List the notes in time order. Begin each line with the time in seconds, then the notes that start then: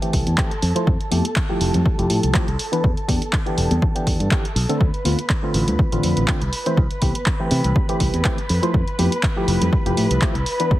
Already playing: A4 A5
0.01 E3 A3 C4 G4, closed hi-hat
0.13 C2, kick, open hi-hat
0.27 E2, closed hi-hat
0.38 E3 A3 C4 G4, kick, clap
0.51 closed hi-hat
0.62 F2, open hi-hat
0.75 F3 A3 E4 C5, closed hi-hat
0.87 F2, kick
1.01 closed hi-hat
1.11 F2 F3 A3 E4 G4, open hi-hat, high conga
1.25 closed hi-hat, shaker
1.36 kick, clap
1.49 F3 A3 E4 G4, shaker
1.61 F1, open hi-hat
1.74 F2, closed hi-hat, low conga, shaker
1.86 kick
1.98 F1 F3 A3 E4 G4, closed hi-hat
2.10 A2, open hi-hat
2.23 C2, closed hi-hat
2.34 F3 A3 E4 G4, kick, clap
2.48 C2, closed hi-hat
2.59 open hi-hat
2.72 E3 B3 D4 B4, closed hi-hat
2.84 E2, kick
2.97 closed hi-hat
3.07 E2 E3 B3 D4 G4, kick, open hi-hat, high conga
3.22 closed hi-hat
3.33 kick, clap
3.46 E3 B3 D4 G4, closed hi-hat
3.58 E1, open hi-hat
3.70 E2, closed hi-hat, high conga, low conga, shaker
3.82 kick
3.95 E3 B3 D4 G4, closed hi-hat, shaker
4.07 E2, kick, open hi-hat
4.20 G2, closed hi-hat
4.31 E3 B3 D4 G4, kick, clap
4.45 closed hi-hat
4.56 B1, open hi-hat
4.69 D3 A3 C4 A4, closed hi-hat
4.81 D2 B4 B5, kick
4.94 closed hi-hat
5.04 D2 D3 A3 C4 F4, open hi-hat, high conga
5.18 closed hi-hat, shaker
5.30 kick, clap
5.43 D3 A3 C4 F4
5.54 A1, open hi-hat
5.68 D2, closed hi-hat, low conga, shaker
5.79 kick
5.92 A1 D3 A3 C4 F4, closed hi-hat
6.03 F2, open hi-hat
6.17 A1, closed hi-hat
6.28 D3 A3 C4 F4, kick, clap
6.42 C2, closed hi-hat
6.53 open hi-hat
6.66 E3 A3 C4 C5, closed hi-hat
6.77 C2, kick
6.91 closed hi-hat
7.02 C2 E3 A3 C4 G4, kick, open hi-hat, high conga
7.15 closed hi-hat, shaker
7.26 kick, clap
7.39 E3 A3 C4 G4
7.51 C3, open hi-hat
7.64 C2, closed hi-hat
7.76 kick
7.89 E3 A3 C4 G4, closed hi-hat
8.00 C2, kick, open hi-hat
8.14 E2, closed hi-hat
8.24 E3 A3 C4 G4, kick, clap
8.38 closed hi-hat
8.49 F2, open hi-hat
8.62 F3 A3 E4 C5, closed hi-hat
8.74 F2, kick
8.88 closed hi-hat
8.98 F2 F3 A3 E4 G4, open hi-hat, high conga
9.12 closed hi-hat, shaker
9.23 kick, clap
9.36 F3 A3 E4 G4, shaker
9.48 F1, open hi-hat
9.61 F2, closed hi-hat, low conga, shaker
9.73 kick
9.86 F1 F3 A3 E4 G4, closed hi-hat
9.97 A2, open hi-hat
10.10 C2, closed hi-hat
10.21 F3 A3 E4 G4, kick, clap
10.35 C2, closed hi-hat
10.46 open hi-hat
10.60 E3 B3 D4 B4, closed hi-hat
10.71 E2, kick